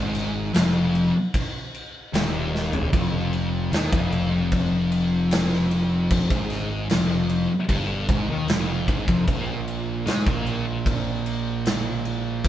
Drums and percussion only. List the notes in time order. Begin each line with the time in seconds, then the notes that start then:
0.15 snare, crash
0.54 snare, crash
0.95 crash
1.34 kick, crash
1.74 crash
2.14 snare, crash
2.55 snare
2.73 floor tom
2.93 kick, crash
3.33 crash
3.73 snare, crash
3.93 kick
4.12 crash
4.52 kick, crash
4.92 crash
5.31 snare, crash
5.53 snare
5.71 crash
6.10 kick, crash
6.30 kick
6.50 snare, crash
6.89 snare, crash
7.29 crash
7.69 kick, crash
8.09 kick, crash
8.48 snare, crash
8.88 kick, crash
9.08 kick
9.28 kick, crash
9.68 crash
10.07 snare, crash
10.27 kick
10.46 crash
10.86 kick, crash
11.26 crash
11.65 snare, crash
12.05 crash
12.45 kick, crash